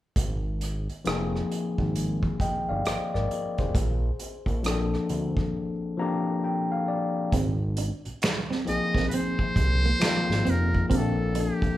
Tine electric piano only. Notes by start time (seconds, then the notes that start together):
1.05 F3 A#3 C4 D#4 G#4
2.41 D#5 G5
2.69 D5 F5
2.86 C5 D#5
3.14 A#4 D5
3.59 G#4 C5
4.63 F3 A#3 C4 D4 A4
5.97 F3 A#3 C4 D4 G4 A#5
6.44 G5
6.72 F5
6.88 D5
8.65 F3 A#3 C4 D#4 G#4
10.00 F3 A#3 C4 D#4 F4
10.90 F3 A#3 C4 D4 G4
11.00 A4